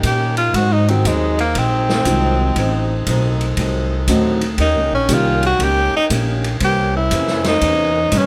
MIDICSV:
0, 0, Header, 1, 8, 480
1, 0, Start_track
1, 0, Tempo, 505476
1, 518, Time_signature, 4, 2, 24, 8
1, 7846, End_track
2, 0, Start_track
2, 0, Title_t, "Saxophone section"
2, 0, Program_c, 0, 65
2, 0, Note_on_c, 0, 63, 65
2, 0, Note_on_c, 0, 70, 57
2, 0, Note_on_c, 0, 75, 63
2, 0, Note_on_c, 0, 79, 79
2, 333, Note_off_c, 0, 70, 0
2, 333, Note_off_c, 0, 75, 0
2, 333, Note_off_c, 0, 79, 0
2, 494, Note_on_c, 0, 72, 58
2, 498, Note_on_c, 0, 68, 68
2, 502, Note_on_c, 0, 75, 69
2, 2409, Note_off_c, 0, 68, 0
2, 2460, Note_on_c, 0, 69, 59
2, 4308, Note_off_c, 0, 72, 0
2, 4309, Note_off_c, 0, 63, 0
2, 4312, Note_off_c, 0, 75, 0
2, 4347, Note_on_c, 0, 63, 73
2, 4348, Note_on_c, 0, 79, 82
2, 4350, Note_off_c, 0, 69, 0
2, 4354, Note_on_c, 0, 73, 68
2, 4359, Note_on_c, 0, 70, 64
2, 6245, Note_off_c, 0, 73, 0
2, 6253, Note_off_c, 0, 63, 0
2, 6253, Note_off_c, 0, 79, 0
2, 6256, Note_on_c, 0, 72, 69
2, 6256, Note_on_c, 0, 73, 74
2, 6259, Note_on_c, 0, 61, 71
2, 7846, Note_off_c, 0, 61, 0
2, 7846, Note_off_c, 0, 70, 0
2, 7846, Note_off_c, 0, 72, 0
2, 7846, Note_off_c, 0, 73, 0
2, 7846, End_track
3, 0, Start_track
3, 0, Title_t, "Tenor saxophone"
3, 0, Program_c, 1, 66
3, 61, Note_on_c, 1, 67, 74
3, 351, Note_off_c, 1, 67, 0
3, 359, Note_on_c, 1, 65, 86
3, 522, Note_on_c, 1, 66, 94
3, 536, Note_off_c, 1, 65, 0
3, 687, Note_on_c, 1, 63, 80
3, 702, Note_off_c, 1, 66, 0
3, 849, Note_on_c, 1, 60, 73
3, 863, Note_off_c, 1, 63, 0
3, 1012, Note_on_c, 1, 56, 68
3, 1026, Note_off_c, 1, 60, 0
3, 1326, Note_off_c, 1, 56, 0
3, 1332, Note_on_c, 1, 58, 91
3, 1505, Note_on_c, 1, 60, 89
3, 1519, Note_off_c, 1, 58, 0
3, 2932, Note_off_c, 1, 60, 0
3, 4378, Note_on_c, 1, 63, 82
3, 4669, Note_off_c, 1, 63, 0
3, 4697, Note_on_c, 1, 61, 93
3, 4878, Note_on_c, 1, 65, 88
3, 4893, Note_off_c, 1, 61, 0
3, 5181, Note_off_c, 1, 65, 0
3, 5188, Note_on_c, 1, 66, 99
3, 5357, Note_on_c, 1, 67, 103
3, 5371, Note_off_c, 1, 66, 0
3, 5658, Note_off_c, 1, 67, 0
3, 5663, Note_on_c, 1, 63, 95
3, 5750, Note_off_c, 1, 63, 0
3, 6311, Note_on_c, 1, 67, 86
3, 6596, Note_off_c, 1, 67, 0
3, 6615, Note_on_c, 1, 64, 85
3, 7055, Note_off_c, 1, 64, 0
3, 7101, Note_on_c, 1, 63, 92
3, 7762, Note_on_c, 1, 61, 78
3, 7776, Note_off_c, 1, 63, 0
3, 7846, Note_off_c, 1, 61, 0
3, 7846, End_track
4, 0, Start_track
4, 0, Title_t, "Steel-string acoustic guitar"
4, 0, Program_c, 2, 25
4, 48, Note_on_c, 2, 51, 54
4, 53, Note_on_c, 2, 58, 57
4, 59, Note_on_c, 2, 61, 60
4, 60, Note_on_c, 2, 67, 62
4, 382, Note_off_c, 2, 51, 0
4, 385, Note_off_c, 2, 58, 0
4, 388, Note_off_c, 2, 61, 0
4, 388, Note_off_c, 2, 67, 0
4, 532, Note_on_c, 2, 44, 44
4, 538, Note_on_c, 2, 54, 47
4, 544, Note_on_c, 2, 60, 45
4, 554, Note_on_c, 2, 63, 54
4, 864, Note_off_c, 2, 44, 0
4, 867, Note_off_c, 2, 54, 0
4, 870, Note_off_c, 2, 60, 0
4, 875, Note_off_c, 2, 63, 0
4, 1013, Note_on_c, 2, 44, 58
4, 1016, Note_on_c, 2, 54, 60
4, 1021, Note_on_c, 2, 60, 69
4, 1024, Note_on_c, 2, 63, 65
4, 1345, Note_off_c, 2, 44, 0
4, 1346, Note_off_c, 2, 54, 0
4, 1349, Note_off_c, 2, 60, 0
4, 1350, Note_off_c, 2, 63, 0
4, 1482, Note_on_c, 2, 44, 44
4, 1496, Note_on_c, 2, 54, 51
4, 1500, Note_on_c, 2, 60, 48
4, 1507, Note_on_c, 2, 63, 54
4, 1819, Note_off_c, 2, 44, 0
4, 1826, Note_off_c, 2, 54, 0
4, 1828, Note_off_c, 2, 60, 0
4, 1832, Note_off_c, 2, 63, 0
4, 1955, Note_on_c, 2, 44, 53
4, 1961, Note_on_c, 2, 54, 55
4, 1964, Note_on_c, 2, 60, 62
4, 1974, Note_on_c, 2, 63, 56
4, 2296, Note_off_c, 2, 44, 0
4, 2299, Note_off_c, 2, 54, 0
4, 2300, Note_off_c, 2, 60, 0
4, 2305, Note_off_c, 2, 63, 0
4, 2438, Note_on_c, 2, 45, 51
4, 2446, Note_on_c, 2, 54, 52
4, 2454, Note_on_c, 2, 60, 55
4, 2464, Note_on_c, 2, 63, 60
4, 2777, Note_off_c, 2, 45, 0
4, 2781, Note_off_c, 2, 54, 0
4, 2785, Note_off_c, 2, 60, 0
4, 2790, Note_off_c, 2, 63, 0
4, 2925, Note_on_c, 2, 45, 68
4, 2934, Note_on_c, 2, 54, 66
4, 2937, Note_on_c, 2, 60, 70
4, 2948, Note_on_c, 2, 63, 76
4, 3261, Note_off_c, 2, 45, 0
4, 3265, Note_off_c, 2, 54, 0
4, 3267, Note_off_c, 2, 60, 0
4, 3273, Note_off_c, 2, 63, 0
4, 3388, Note_on_c, 2, 45, 51
4, 3399, Note_on_c, 2, 54, 56
4, 3408, Note_on_c, 2, 60, 58
4, 3414, Note_on_c, 2, 63, 57
4, 3732, Note_off_c, 2, 45, 0
4, 3738, Note_off_c, 2, 54, 0
4, 3742, Note_off_c, 2, 60, 0
4, 3746, Note_off_c, 2, 63, 0
4, 3871, Note_on_c, 2, 45, 69
4, 3882, Note_on_c, 2, 54, 71
4, 3887, Note_on_c, 2, 60, 69
4, 3888, Note_on_c, 2, 63, 75
4, 4214, Note_off_c, 2, 45, 0
4, 4219, Note_off_c, 2, 54, 0
4, 4222, Note_off_c, 2, 60, 0
4, 4222, Note_off_c, 2, 63, 0
4, 4357, Note_on_c, 2, 51, 47
4, 4365, Note_on_c, 2, 58, 48
4, 4376, Note_on_c, 2, 61, 51
4, 4379, Note_on_c, 2, 67, 47
4, 4696, Note_off_c, 2, 51, 0
4, 4701, Note_off_c, 2, 58, 0
4, 4706, Note_off_c, 2, 61, 0
4, 4708, Note_off_c, 2, 67, 0
4, 4839, Note_on_c, 2, 51, 59
4, 4848, Note_on_c, 2, 58, 64
4, 4848, Note_on_c, 2, 61, 68
4, 4856, Note_on_c, 2, 67, 65
4, 5178, Note_off_c, 2, 51, 0
4, 5182, Note_off_c, 2, 58, 0
4, 5182, Note_off_c, 2, 61, 0
4, 5186, Note_off_c, 2, 67, 0
4, 5317, Note_on_c, 2, 51, 45
4, 5326, Note_on_c, 2, 58, 46
4, 5335, Note_on_c, 2, 61, 53
4, 5338, Note_on_c, 2, 67, 53
4, 5656, Note_off_c, 2, 51, 0
4, 5661, Note_off_c, 2, 58, 0
4, 5665, Note_off_c, 2, 61, 0
4, 5667, Note_off_c, 2, 67, 0
4, 5795, Note_on_c, 2, 51, 55
4, 5801, Note_on_c, 2, 58, 68
4, 5806, Note_on_c, 2, 61, 59
4, 5810, Note_on_c, 2, 67, 65
4, 6135, Note_off_c, 2, 51, 0
4, 6138, Note_off_c, 2, 58, 0
4, 6141, Note_off_c, 2, 61, 0
4, 6143, Note_off_c, 2, 67, 0
4, 6279, Note_on_c, 2, 48, 44
4, 6288, Note_on_c, 2, 52, 46
4, 6302, Note_on_c, 2, 58, 53
4, 6307, Note_on_c, 2, 61, 53
4, 6617, Note_off_c, 2, 48, 0
4, 6622, Note_off_c, 2, 52, 0
4, 6629, Note_off_c, 2, 58, 0
4, 6631, Note_off_c, 2, 61, 0
4, 6767, Note_on_c, 2, 48, 58
4, 6774, Note_on_c, 2, 52, 56
4, 6774, Note_on_c, 2, 58, 66
4, 6785, Note_on_c, 2, 61, 70
4, 7101, Note_off_c, 2, 48, 0
4, 7104, Note_off_c, 2, 52, 0
4, 7105, Note_off_c, 2, 58, 0
4, 7110, Note_off_c, 2, 61, 0
4, 7243, Note_on_c, 2, 48, 43
4, 7251, Note_on_c, 2, 52, 52
4, 7262, Note_on_c, 2, 58, 50
4, 7271, Note_on_c, 2, 61, 55
4, 7579, Note_off_c, 2, 48, 0
4, 7583, Note_off_c, 2, 52, 0
4, 7588, Note_off_c, 2, 58, 0
4, 7593, Note_off_c, 2, 61, 0
4, 7725, Note_on_c, 2, 48, 65
4, 7734, Note_on_c, 2, 52, 59
4, 7740, Note_on_c, 2, 58, 59
4, 7740, Note_on_c, 2, 61, 66
4, 7846, Note_off_c, 2, 48, 0
4, 7846, Note_off_c, 2, 52, 0
4, 7846, Note_off_c, 2, 58, 0
4, 7846, Note_off_c, 2, 61, 0
4, 7846, End_track
5, 0, Start_track
5, 0, Title_t, "Upright piano"
5, 0, Program_c, 3, 0
5, 846, Note_on_c, 3, 54, 54
5, 847, Note_on_c, 3, 51, 58
5, 851, Note_on_c, 3, 66, 65
5, 853, Note_on_c, 3, 56, 52
5, 856, Note_on_c, 3, 60, 55
5, 985, Note_off_c, 3, 51, 0
5, 985, Note_off_c, 3, 54, 0
5, 987, Note_off_c, 3, 66, 0
5, 988, Note_off_c, 3, 56, 0
5, 990, Note_off_c, 3, 60, 0
5, 1956, Note_on_c, 3, 54, 49
5, 1959, Note_on_c, 3, 51, 56
5, 1962, Note_on_c, 3, 56, 52
5, 1963, Note_on_c, 3, 65, 61
5, 1965, Note_on_c, 3, 60, 53
5, 2437, Note_off_c, 3, 54, 0
5, 2439, Note_off_c, 3, 51, 0
5, 2440, Note_off_c, 3, 56, 0
5, 2441, Note_off_c, 3, 65, 0
5, 2442, Note_off_c, 3, 60, 0
5, 3879, Note_on_c, 3, 51, 60
5, 3879, Note_on_c, 3, 57, 54
5, 3880, Note_on_c, 3, 60, 53
5, 3881, Note_on_c, 3, 54, 50
5, 3883, Note_on_c, 3, 66, 65
5, 4170, Note_off_c, 3, 51, 0
5, 4170, Note_off_c, 3, 57, 0
5, 4170, Note_off_c, 3, 60, 0
5, 4171, Note_off_c, 3, 54, 0
5, 4171, Note_off_c, 3, 66, 0
5, 4840, Note_on_c, 3, 55, 56
5, 4842, Note_on_c, 3, 51, 60
5, 4842, Note_on_c, 3, 58, 51
5, 4844, Note_on_c, 3, 61, 51
5, 4850, Note_on_c, 3, 67, 62
5, 5130, Note_off_c, 3, 55, 0
5, 5131, Note_off_c, 3, 51, 0
5, 5131, Note_off_c, 3, 58, 0
5, 5132, Note_off_c, 3, 61, 0
5, 5135, Note_off_c, 3, 67, 0
5, 7846, End_track
6, 0, Start_track
6, 0, Title_t, "Upright bass"
6, 0, Program_c, 4, 32
6, 31, Note_on_c, 4, 46, 88
6, 500, Note_off_c, 4, 46, 0
6, 509, Note_on_c, 4, 44, 88
6, 979, Note_off_c, 4, 44, 0
6, 995, Note_on_c, 4, 39, 84
6, 1462, Note_off_c, 4, 39, 0
6, 1477, Note_on_c, 4, 34, 81
6, 1943, Note_off_c, 4, 34, 0
6, 1951, Note_on_c, 4, 36, 90
6, 2420, Note_off_c, 4, 36, 0
6, 2430, Note_on_c, 4, 33, 95
6, 2900, Note_off_c, 4, 33, 0
6, 2912, Note_on_c, 4, 35, 93
6, 3380, Note_off_c, 4, 35, 0
6, 3392, Note_on_c, 4, 36, 75
6, 3861, Note_off_c, 4, 36, 0
6, 3872, Note_on_c, 4, 38, 90
6, 4340, Note_off_c, 4, 38, 0
6, 4349, Note_on_c, 4, 39, 93
6, 4517, Note_off_c, 4, 39, 0
6, 4517, Note_on_c, 4, 37, 62
6, 4664, Note_off_c, 4, 37, 0
6, 4669, Note_on_c, 4, 34, 63
6, 4822, Note_off_c, 4, 34, 0
6, 4829, Note_on_c, 4, 36, 85
6, 5299, Note_off_c, 4, 36, 0
6, 5309, Note_on_c, 4, 37, 75
6, 5614, Note_off_c, 4, 37, 0
6, 5792, Note_on_c, 4, 34, 97
6, 6260, Note_off_c, 4, 34, 0
6, 6270, Note_on_c, 4, 36, 89
6, 6739, Note_off_c, 4, 36, 0
6, 6753, Note_on_c, 4, 41, 92
6, 7220, Note_off_c, 4, 41, 0
6, 7232, Note_on_c, 4, 40, 89
6, 7700, Note_off_c, 4, 40, 0
6, 7707, Note_on_c, 4, 43, 98
6, 7846, Note_off_c, 4, 43, 0
6, 7846, End_track
7, 0, Start_track
7, 0, Title_t, "Muted upright bass strokes"
7, 5645, Note_on_c, 9, 29, 45
7, 5740, Note_off_c, 9, 29, 0
7, 7846, End_track
8, 0, Start_track
8, 0, Title_t, "Drums"
8, 30, Note_on_c, 9, 36, 20
8, 31, Note_on_c, 9, 44, 59
8, 31, Note_on_c, 9, 51, 74
8, 125, Note_off_c, 9, 36, 0
8, 126, Note_off_c, 9, 44, 0
8, 126, Note_off_c, 9, 51, 0
8, 350, Note_on_c, 9, 51, 49
8, 445, Note_off_c, 9, 51, 0
8, 512, Note_on_c, 9, 36, 20
8, 514, Note_on_c, 9, 51, 67
8, 607, Note_off_c, 9, 36, 0
8, 609, Note_off_c, 9, 51, 0
8, 840, Note_on_c, 9, 51, 47
8, 935, Note_off_c, 9, 51, 0
8, 995, Note_on_c, 9, 36, 24
8, 998, Note_on_c, 9, 44, 60
8, 998, Note_on_c, 9, 51, 69
8, 1090, Note_off_c, 9, 36, 0
8, 1093, Note_off_c, 9, 44, 0
8, 1093, Note_off_c, 9, 51, 0
8, 1317, Note_on_c, 9, 51, 44
8, 1412, Note_off_c, 9, 51, 0
8, 1472, Note_on_c, 9, 51, 69
8, 1473, Note_on_c, 9, 36, 24
8, 1567, Note_off_c, 9, 51, 0
8, 1568, Note_off_c, 9, 36, 0
8, 1797, Note_on_c, 9, 38, 52
8, 1892, Note_off_c, 9, 38, 0
8, 1949, Note_on_c, 9, 44, 54
8, 1949, Note_on_c, 9, 51, 74
8, 1951, Note_on_c, 9, 36, 25
8, 2044, Note_off_c, 9, 44, 0
8, 2044, Note_off_c, 9, 51, 0
8, 2046, Note_off_c, 9, 36, 0
8, 2429, Note_on_c, 9, 51, 71
8, 2431, Note_on_c, 9, 36, 21
8, 2524, Note_off_c, 9, 51, 0
8, 2525, Note_off_c, 9, 36, 0
8, 2910, Note_on_c, 9, 36, 19
8, 2911, Note_on_c, 9, 44, 59
8, 2911, Note_on_c, 9, 51, 74
8, 3005, Note_off_c, 9, 36, 0
8, 3006, Note_off_c, 9, 44, 0
8, 3006, Note_off_c, 9, 51, 0
8, 3235, Note_on_c, 9, 51, 44
8, 3330, Note_off_c, 9, 51, 0
8, 3389, Note_on_c, 9, 51, 68
8, 3391, Note_on_c, 9, 36, 30
8, 3484, Note_off_c, 9, 51, 0
8, 3486, Note_off_c, 9, 36, 0
8, 3870, Note_on_c, 9, 36, 29
8, 3870, Note_on_c, 9, 44, 61
8, 3870, Note_on_c, 9, 51, 73
8, 3965, Note_off_c, 9, 36, 0
8, 3965, Note_off_c, 9, 44, 0
8, 3965, Note_off_c, 9, 51, 0
8, 4190, Note_on_c, 9, 51, 53
8, 4285, Note_off_c, 9, 51, 0
8, 4348, Note_on_c, 9, 51, 61
8, 4349, Note_on_c, 9, 36, 21
8, 4443, Note_off_c, 9, 51, 0
8, 4444, Note_off_c, 9, 36, 0
8, 4830, Note_on_c, 9, 36, 27
8, 4830, Note_on_c, 9, 44, 61
8, 4830, Note_on_c, 9, 51, 76
8, 4925, Note_off_c, 9, 36, 0
8, 4925, Note_off_c, 9, 44, 0
8, 4925, Note_off_c, 9, 51, 0
8, 5153, Note_on_c, 9, 51, 49
8, 5248, Note_off_c, 9, 51, 0
8, 5313, Note_on_c, 9, 36, 22
8, 5315, Note_on_c, 9, 51, 70
8, 5408, Note_off_c, 9, 36, 0
8, 5410, Note_off_c, 9, 51, 0
8, 5793, Note_on_c, 9, 36, 25
8, 5794, Note_on_c, 9, 44, 67
8, 5794, Note_on_c, 9, 51, 75
8, 5888, Note_off_c, 9, 36, 0
8, 5889, Note_off_c, 9, 44, 0
8, 5889, Note_off_c, 9, 51, 0
8, 6118, Note_on_c, 9, 51, 49
8, 6213, Note_off_c, 9, 51, 0
8, 6270, Note_on_c, 9, 51, 75
8, 6273, Note_on_c, 9, 36, 27
8, 6365, Note_off_c, 9, 51, 0
8, 6368, Note_off_c, 9, 36, 0
8, 6751, Note_on_c, 9, 44, 52
8, 6751, Note_on_c, 9, 51, 68
8, 6753, Note_on_c, 9, 36, 19
8, 6846, Note_off_c, 9, 44, 0
8, 6846, Note_off_c, 9, 51, 0
8, 6848, Note_off_c, 9, 36, 0
8, 6909, Note_on_c, 9, 38, 29
8, 7004, Note_off_c, 9, 38, 0
8, 7068, Note_on_c, 9, 38, 46
8, 7068, Note_on_c, 9, 51, 47
8, 7163, Note_off_c, 9, 38, 0
8, 7163, Note_off_c, 9, 51, 0
8, 7231, Note_on_c, 9, 51, 71
8, 7232, Note_on_c, 9, 36, 25
8, 7326, Note_off_c, 9, 51, 0
8, 7327, Note_off_c, 9, 36, 0
8, 7707, Note_on_c, 9, 44, 59
8, 7707, Note_on_c, 9, 51, 80
8, 7712, Note_on_c, 9, 36, 23
8, 7802, Note_off_c, 9, 44, 0
8, 7802, Note_off_c, 9, 51, 0
8, 7807, Note_off_c, 9, 36, 0
8, 7846, End_track
0, 0, End_of_file